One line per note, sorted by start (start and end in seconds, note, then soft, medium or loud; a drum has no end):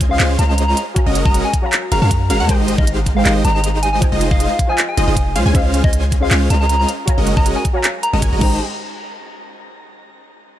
0.00 0.18 C#2 medium
0.00 0.18 G#3 medium
0.00 0.18 C#4 medium
0.00 0.18 F4 medium
0.00 0.18 C5 medium
0.00 0.18 G#5 medium
0.00 kick medium
0.00 closed hi-hat medium
0.09 0.75 C#4 medium
0.09 0.75 G#4 medium
0.09 0.76 C5 medium
0.09 0.76 D#5 medium
0.09 0.17 F5 loud
0.13 0.77 F5 medium
0.20 0.37 C#2 medium
0.20 0.37 G#3 medium
0.20 0.37 C#4 medium
0.20 0.37 F4 medium
0.20 0.37 C5 medium
0.20 0.37 F5 loud
0.20 clap loud
0.20 closed hi-hat medium
0.39 0.74 C#2 medium
0.39 0.76 G#3 medium
0.39 0.76 C#4 medium
0.39 0.76 F4 medium
0.39 0.76 C5 medium
0.39 0.76 D#5 medium
0.39 0.47 A#5 medium
0.39 closed hi-hat medium
0.49 0.68 A#5 medium
0.58 closed hi-hat medium
0.68 0.79 A#5 medium
0.77 closed hi-hat medium
0.94 1.60 F#4 medium
0.94 1.61 C#5 medium
0.94 1.61 F5 medium
0.94 1.62 G#5 medium
0.94 kick loud
0.94 closed hi-hat medium
0.98 1.62 A#5 medium
1.06 1.23 F#1 loud
1.06 1.22 G#3 medium
1.06 1.22 C#4 medium
1.06 1.22 F#4 medium
1.06 1.22 A#4 medium
1.06 1.22 D#5 loud
1.15 closed hi-hat medium
1.25 1.42 F#1 medium
1.25 1.44 G#3 loud
1.25 1.44 C#4 loud
1.25 1.44 F#4 medium
1.25 1.44 A#4 loud
1.25 1.44 D#5 loud
1.25 1.36 A#5 loud
1.25 kick loud
1.34 closed hi-hat medium
1.45 1.55 G#5 medium
1.53 kick medium
1.53 closed hi-hat medium
1.62 2.46 F#4 medium
1.62 2.46 C#5 medium
1.62 2.47 F5 medium
1.62 2.47 G#5 medium
1.66 2.48 A#5 loud
1.73 clap loud
1.73 closed hi-hat medium
1.92 2.00 F#1 medium
1.92 1.99 G#3 medium
1.92 1.99 C#4 medium
1.92 1.99 F#4 medium
1.92 1.99 A#4 medium
1.92 1.99 F5 medium
1.92 2.00 A#5 medium
1.92 closed hi-hat medium
2.02 2.31 F#2 loud
2.02 2.13 G#3 medium
2.02 2.13 C#4 medium
2.02 2.13 F#4 medium
2.02 2.13 A#4 medium
2.02 2.13 F5 medium
2.02 2.28 A#5 medium
2.11 kick medium
2.11 closed hi-hat medium
2.30 2.42 F#1 loud
2.30 2.38 G#3 medium
2.30 2.38 C#4 medium
2.30 2.38 F#4 medium
2.30 2.38 A#4 medium
2.30 2.38 F5 loud
2.30 2.53 A#5 medium
2.30 closed hi-hat medium
2.40 2.51 F#2 medium
2.40 2.47 G#3 medium
2.40 2.47 C#4 medium
2.40 2.47 F#4 medium
2.40 2.47 A#4 medium
2.40 2.47 F#5 loud
2.47 2.76 G#1 loud
2.47 3.13 G#3 loud
2.47 2.76 G#3 loud
2.47 2.76 D#4 medium
2.47 2.76 G4 medium
2.47 3.14 A#4 medium
2.47 2.76 C5 medium
2.47 3.15 C5 medium
2.47 2.76 D#5 loud
2.47 kick loud
2.47 closed hi-hat medium
2.51 3.15 G5 loud
2.68 closed hi-hat medium
2.78 3.24 G#1 loud
2.78 3.23 G#3 medium
2.78 3.23 D#4 medium
2.78 3.23 G4 medium
2.78 3.23 C5 medium
2.78 2.89 D#5 loud
2.78 3.23 F5 medium
2.78 kick loud
2.87 closed hi-hat medium
3.06 kick medium
3.06 closed hi-hat medium
3.15 3.99 G#3 medium
3.15 4.00 A#4 medium
3.15 4.00 C5 medium
3.15 3.22 F5 loud
3.19 4.01 G5 medium
3.25 3.43 G#1 loud
3.25 3.42 G#3 medium
3.25 3.42 D#4 medium
3.25 3.42 G4 medium
3.25 3.42 C5 medium
3.25 3.42 D#5 loud
3.25 3.32 F5 medium
3.25 clap loud
3.25 closed hi-hat medium
3.45 4.10 G#1 medium
3.45 4.01 G#3 medium
3.45 4.01 D#4 medium
3.45 4.01 G4 medium
3.45 4.01 C5 medium
3.45 4.01 D#5 medium
3.45 3.53 A#5 medium
3.45 closed hi-hat medium
3.55 3.81 A#5 medium
3.64 closed hi-hat medium
3.83 3.89 G#5 medium
3.83 closed hi-hat medium
3.93 3.99 G#5 medium
4.00 4.66 F4 medium
4.00 4.66 C5 medium
4.00 4.67 D#5 medium
4.00 4.67 G5 medium
4.00 kick loud
4.00 closed hi-hat medium
4.04 4.68 G#5 medium
4.12 4.29 F1 loud
4.12 4.28 G#3 loud
4.12 4.28 D#4 medium
4.12 4.28 F4 medium
4.12 4.28 C5 medium
4.12 4.28 D#5 loud
4.21 closed hi-hat medium
4.31 4.47 F1 medium
4.31 4.49 G#3 loud
4.31 4.49 D#4 loud
4.31 4.49 F4 loud
4.31 4.49 C5 loud
4.31 4.49 D#5 loud
4.31 4.67 F5 loud
4.31 kick loud
4.40 closed hi-hat medium
4.59 kick medium
4.59 closed hi-hat medium
4.67 5.34 F4 medium
4.67 5.34 C5 medium
4.67 5.35 D#5 medium
4.67 5.35 F5 medium
4.67 4.80 G#5 loud
4.71 5.36 G#5 loud
4.78 clap loud
4.78 closed hi-hat medium
4.89 5.40 G#5 medium
4.97 5.06 F1 medium
4.97 5.05 G#3 medium
4.97 5.05 D#4 medium
4.97 5.05 F4 medium
4.97 5.05 C5 medium
4.97 5.05 D#5 medium
4.97 closed hi-hat medium
5.08 5.37 F1 loud
5.08 5.19 G#3 medium
5.08 5.19 D#4 medium
5.08 5.19 F4 medium
5.08 5.19 C5 medium
5.08 5.19 D#5 loud
5.08 5.19 D#5 medium
5.17 kick medium
5.17 closed hi-hat medium
5.36 5.44 C#2 loud
5.36 5.43 G#3 medium
5.36 5.43 C#4 medium
5.36 5.43 F4 medium
5.36 5.43 C5 medium
5.36 5.43 F5 loud
5.36 closed hi-hat medium
5.46 5.53 C#2 loud
5.46 5.53 G#3 medium
5.46 5.53 C#4 medium
5.46 5.53 F4 medium
5.46 5.53 C5 medium
5.46 5.53 G#5 loud
5.53 5.82 C#2 medium
5.53 5.82 G#3 medium
5.53 6.19 C#4 loud
5.53 5.82 C#4 medium
5.53 5.82 F4 medium
5.53 6.19 G#4 medium
5.53 5.82 C5 medium
5.53 6.20 C5 medium
5.53 6.20 D#5 medium
5.53 5.82 F5 loud
5.53 6.21 F5 loud
5.53 kick loud
5.53 closed hi-hat medium
5.74 closed hi-hat medium
5.84 6.29 C#2 loud
5.84 6.29 G#3 medium
5.84 6.29 C#4 medium
5.84 6.29 F4 medium
5.84 6.29 C5 medium
5.84 5.95 D#5 loud
5.84 6.29 G#5 medium
5.84 kick loud
5.93 closed hi-hat medium
6.12 kick medium
6.12 closed hi-hat medium
6.20 6.86 C#4 medium
6.20 6.87 G#4 medium
6.20 6.87 C5 medium
6.20 6.88 D#5 medium
6.20 6.28 F5 loud
6.20 6.88 F5 loud
6.31 6.48 C#2 loud
6.31 6.48 G#3 medium
6.31 6.48 C#4 medium
6.31 6.48 F4 medium
6.31 6.48 C5 medium
6.31 6.48 F5 loud
6.31 6.38 F5 medium
6.31 clap loud
6.31 closed hi-hat medium
6.50 6.86 C#2 medium
6.50 6.87 G#3 medium
6.50 6.87 C#4 medium
6.50 6.87 F4 medium
6.50 6.87 C5 medium
6.50 6.87 D#5 medium
6.50 6.59 A#5 medium
6.50 closed hi-hat medium
6.61 6.79 A#5 medium
6.69 closed hi-hat medium
6.80 6.90 A#5 medium
6.89 closed hi-hat medium
7.06 7.72 F#4 medium
7.06 7.72 C#5 medium
7.06 7.73 F5 medium
7.06 7.73 G#5 medium
7.06 7.74 A#5 medium
7.06 kick loud
7.06 closed hi-hat medium
7.18 7.35 F#1 loud
7.18 7.34 G#3 medium
7.18 7.34 C#4 medium
7.18 7.34 F#4 medium
7.18 7.34 A#4 medium
7.18 7.34 D#5 loud
7.27 closed hi-hat medium
7.37 7.53 F#1 loud
7.37 7.55 G#3 loud
7.37 7.55 C#4 loud
7.37 7.55 F#4 loud
7.37 7.55 A#4 loud
7.37 7.55 D#5 loud
7.37 7.48 A#5 loud
7.37 kick loud
7.46 closed hi-hat medium
7.56 7.67 G#5 medium
7.65 kick medium
7.65 closed hi-hat medium
7.73 8.40 F#4 medium
7.73 8.41 C#5 medium
7.73 8.41 F5 medium
7.73 8.42 G#5 medium
7.77 8.42 A#5 loud
7.84 clap loud
7.84 closed hi-hat medium
8.03 8.11 A#5 medium
8.03 closed hi-hat medium
8.13 8.21 F#1 loud
8.13 8.20 G#3 medium
8.13 8.20 C#4 medium
8.13 8.20 F#4 medium
8.13 8.20 A#4 medium
8.13 8.20 D#5 medium
8.13 8.20 D#5 loud
8.13 8.40 A#5 medium
8.22 8.30 F#1 loud
8.22 8.30 G#3 medium
8.22 8.30 C#4 medium
8.22 8.30 F#4 medium
8.22 8.30 A#4 medium
8.22 8.30 G#5 medium
8.22 8.30 G#5 loud
8.22 kick medium
8.22 closed hi-hat medium
8.32 8.41 F#1 medium
8.32 8.40 G#3 medium
8.32 8.41 C#4 medium
8.32 8.41 F#4 medium
8.32 8.41 A#4 medium
8.32 8.40 D#5 medium
8.32 8.40 D#5 loud
8.38 8.59 G#1 loud
8.38 8.54 G#3 medium
8.38 8.56 G#3 medium
8.38 8.55 D#4 medium
8.38 8.56 D#4 medium
8.38 8.56 G4 medium
8.38 8.56 A#4 medium
8.38 8.56 C5 medium
8.38 8.56 D#5 loud
8.38 8.61 A#5 medium
8.38 kick loud
8.38 crash medium
8.43 8.57 C5 medium
8.43 8.57 G5 medium